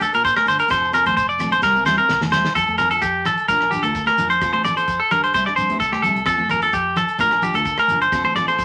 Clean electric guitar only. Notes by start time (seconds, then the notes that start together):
0.02 A4
0.15 A#4
0.25 C5
0.37 A#4
0.48 C5
0.60 A#4
0.71 C5
0.94 A#4
1.07 C5
1.17 C5
1.29 D5
1.52 C5
1.63 A#4
1.86 C5
1.98 A#4
2.32 C5
2.55 A4
2.78 A#4
2.91 A4
3.02 G4
3.26 A4
3.48 A#4
3.71 G4
3.83 A4
4.07 A#4
4.30 C5
4.53 C5
4.65 D5
4.77 C5
5.00 A4
5.11 A#4
5.24 C5
5.34 C5
5.46 D5
5.56 C5
5.80 A4
5.92 G4
6.02 A4
6.26 A4
6.51 A#4
6.63 A4
6.73 G4
6.97 A4
7.21 A#4
7.43 G4
7.55 A4
7.79 A#4
8.02 C5
8.25 C5
8.36 D5
8.48 C5